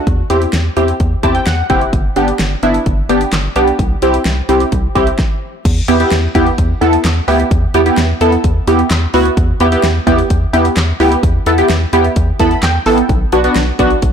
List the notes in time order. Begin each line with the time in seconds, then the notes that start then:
0.07 E2, kick, closed hi-hat
0.30 E2 C4 E4 G4, closed hi-hat
0.42 closed hi-hat
0.53 E2, snare, closed hi-hat
0.77 E2 C4 E4 G4, closed hi-hat
0.88 closed hi-hat
1.00 E2, kick, closed hi-hat
1.23 E2 C4 E4 G4 A5, kick, closed hi-hat
1.35 G5, closed hi-hat
1.46 E2 F#5, snare, closed hi-hat
1.70 F#1 C4 E4 G4, kick, closed hi-hat
1.81 closed hi-hat
1.93 G1, kick, closed hi-hat
2.16 G1 B3 D4 G4, closed hi-hat
2.28 closed hi-hat
2.39 G1, snare, closed hi-hat
2.63 G1 B3 D4 E4, closed hi-hat
2.74 closed hi-hat
2.86 G1, kick, closed hi-hat
3.09 G1 B3 D4 G4, closed hi-hat
3.21 closed hi-hat
3.32 G1, snare, clap, closed hi-hat
3.56 B1 B3 D4 G4, closed hi-hat
3.68 closed hi-hat
3.79 C2, kick, closed hi-hat
4.02 C2 C4 E4 G4, closed hi-hat
4.14 closed hi-hat
4.25 C2, snare, closed hi-hat
4.49 C2 C4 E4 G4, closed hi-hat
4.60 closed hi-hat
4.72 C2, kick, closed hi-hat
4.95 C2 C4 E4 G4, kick, closed hi-hat
5.07 closed hi-hat
5.19 kick, snare
5.65 E2, kick, closed hi-hat, crash
5.88 E2 B3 E4 G4, closed hi-hat
6.00 B3 E4 G4, closed hi-hat
6.12 E2, snare, closed hi-hat
6.35 E2 B3 E4 G4, kick, closed hi-hat
6.46 closed hi-hat
6.58 E2, kick, closed hi-hat
6.81 E2 B3 E4 A4, closed hi-hat
6.93 closed hi-hat
7.05 E2, snare, clap, closed hi-hat
7.28 D2 B3 E4 G4, open hi-hat
7.40 closed hi-hat
7.51 E2, kick, closed hi-hat
7.74 E2 B3 E4 G4, closed hi-hat
7.86 B3 E4 G4, closed hi-hat
7.97 E2, snare, closed hi-hat
8.21 E2 B3 E4 A4, closed hi-hat
8.32 closed hi-hat
8.44 E2, kick, closed hi-hat
8.67 E2 B3 E4 G4, closed hi-hat
8.79 closed hi-hat
8.91 E2, snare, clap, closed hi-hat
9.14 D2 B3 E4 F#4, open hi-hat
9.25 closed hi-hat
9.37 E2, kick, closed hi-hat
9.60 E2 B3 E4 G4, closed hi-hat
9.72 B3 E4 G4, closed hi-hat
9.84 E2, snare, closed hi-hat
10.07 E2 B3 E4 G4, kick, closed hi-hat
10.19 closed hi-hat
10.30 E2, kick, closed hi-hat
10.53 E2 B3 E4 G4, closed hi-hat
10.65 closed hi-hat
10.77 E2, snare, clap, closed hi-hat
11.00 D2 B3 E4 G4, open hi-hat
11.12 closed hi-hat
11.23 E2, kick, closed hi-hat
11.46 E2 B3 E4 A4, closed hi-hat
11.58 B3 E4 G4, closed hi-hat
11.70 E2, snare, closed hi-hat
11.93 E2 B3 E4 G4, closed hi-hat
12.05 closed hi-hat
12.16 E2, kick, closed hi-hat
12.39 E2 B3 E4 A4 B5, kick, closed hi-hat
12.51 closed hi-hat
12.63 E2 G5, snare, clap, closed hi-hat
12.86 A1 B3 E4 A4, open hi-hat
12.98 closed hi-hat
13.09 B1, kick, closed hi-hat
13.32 B1 B3 D4 F#4, closed hi-hat
13.44 B3 D4 F#4, closed hi-hat
13.56 B1, snare, closed hi-hat
13.79 B1 B3 D4 F#4, kick, closed hi-hat
13.90 closed hi-hat
14.02 B1, kick, closed hi-hat